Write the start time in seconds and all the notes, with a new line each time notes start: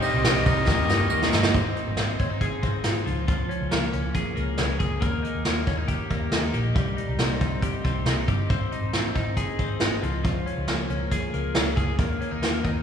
Already playing: C3 G3 C4 D#4 G4 C5 D#5
0.02 C4 D#5, ride, tambourine
0.14 C2 G3 C4 D#4
0.24 C2 G4, snare, ride, tambourine
0.46 C2 C3 G3 C4 D#4 D#5, kick, ride, tambourine
0.67 D#2 D#3 G3 A#3 D#4 G4 A#4 D#5, kick, snare, tambourine
0.89 G2 D#3 G3 A#3 D#4, snare, tambourine
1.10 D#2 D#3 G3 A#3 D#4, tambourine
1.22 snare
1.32 G1 D#4, snare, tambourine
1.43 G3 A#3 D#4, snare
1.54 G#1 C4, kick, closed hi-hat
1.76 D#4, closed hi-hat
1.88 G#1
1.97 G#1 C4, snare, closed hi-hat
2.19 G#1 C#4, kick, closed hi-hat
2.30 D#4
2.41 G#4, kick, closed hi-hat
2.62 G#1 C4, kick, closed hi-hat
2.84 G#1 D#4, snare, closed hi-hat
3.06 C#2 F3, closed hi-hat
3.28 F3, kick, closed hi-hat
3.49 C#4, closed hi-hat
3.61 C#2
3.71 C#2 A#3, snare, closed hi-hat
3.93 C#2 C#4, closed hi-hat
4.14 G#4, kick, closed hi-hat
4.36 C#2 A#3, closed hi-hat
4.58 C#2 C#4, snare, closed hi-hat
4.79 C#2 G#4, kick, closed hi-hat
5.01 D#2 A#3, kick, closed hi-hat
5.23 D#4, closed hi-hat
5.35 D#2
5.45 D#2 A#3, snare, closed hi-hat
5.67 D#2 C#4, kick, closed hi-hat
5.77 D#4
5.88 G4, kick, closed hi-hat
6.10 D#2 A#3, kick, closed hi-hat
6.32 D#2 D#4, snare, closed hi-hat
6.54 A#1 G4, closed hi-hat
6.75 C2 G3, kick, closed hi-hat
6.97 D#4, closed hi-hat
7.07 C2
7.18 C2 C4, snare, closed hi-hat
7.41 C2 D#4, kick, closed hi-hat
7.62 G4, kick, closed hi-hat
7.84 C2 C4, kick, closed hi-hat
8.06 C2 D#4, snare, closed hi-hat
8.28 G1 G4, kick, closed hi-hat
8.50 G#1 C4, kick, closed hi-hat
8.72 D#4, closed hi-hat
8.82 G#1
8.93 G#1 C4, snare, closed hi-hat
9.15 G#1 D#4, kick, closed hi-hat
9.37 G#4, kick, closed hi-hat
9.59 G#1 C4, kick, closed hi-hat
9.80 G#1 D#4, snare, closed hi-hat
10.03 C#2 F3, closed hi-hat
10.24 F3, kick, closed hi-hat
10.46 C#4, closed hi-hat
10.57 C#2
10.68 C#2 A#3, snare, closed hi-hat
10.90 C#2 C#4, closed hi-hat
11.11 G#4, kick, closed hi-hat
11.33 C#2 A#3, closed hi-hat
11.55 C#2 C#4, snare, closed hi-hat
11.76 C#2 G#4, kick, closed hi-hat
11.99 D#2 A#3, kick, closed hi-hat
12.21 C#4, closed hi-hat
12.31 D#2 D#4
12.42 D#2 A#3, snare, closed hi-hat
12.64 D#2 D#4, kick, closed hi-hat